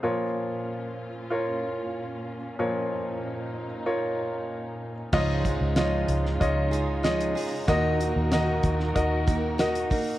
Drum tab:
CC |----------------|----------------|x---------------|----------------|
HH |----------------|----------------|--x-x-x-x-x-xxo-|x-x-x-x-x-x-xxo-|
SD |----------------|----------------|----o--o----o---|----o--o----o---|
BD |----------------|----------------|o-o-----o-------|o-----o-o-o---o-|